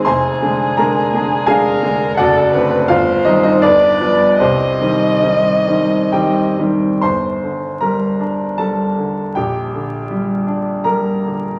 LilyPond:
<<
  \new Staff \with { instrumentName = "Violin" } { \time 3/4 \key c \minor \tempo 4 = 78 aes'2 bes'4 | a'8 b'8 c''4 d''4 | ees''2~ ees''8 r8 | \key g \minor r2. |
r2. | }
  \new Staff \with { instrumentName = "Grand piano" } { \time 3/4 \key c \minor <c'' aes'' c'''>4 <bes' bes''>4 <aes' f'' aes''>4 | <fis' d'' fis''>4 <f' f''>8 <ees' ees''>16 <ees' ees''>16 <d' b' d''>4 | <c' g' c''>2 <g' g''>4 | \key g \minor <c'' c'''>4 <bes' bes''>4 <a' a''>4 |
<g' g''>4. r8 <bes' bes''>4 | }
  \new Staff \with { instrumentName = "Grand piano" } { \clef bass \time 3/4 \key c \minor f,,8 <d aes d'>8 <d aes d'>8 <d aes d'>8 <d aes d'>8 <d aes d'>8 | fis,,8 <d a c'>8 g,,8 <ees g c'>8 g,,8 <f g b>8 | c,8 <ees g c'>8 <ees g c'>8 <ees g c'>8 <ees g c'>8 <ees g c'>8 | \key g \minor g,,8 d8 g8 d'8 g8 d8 |
bes,,8 d8 g8 d'8 g8 d8 | }
>>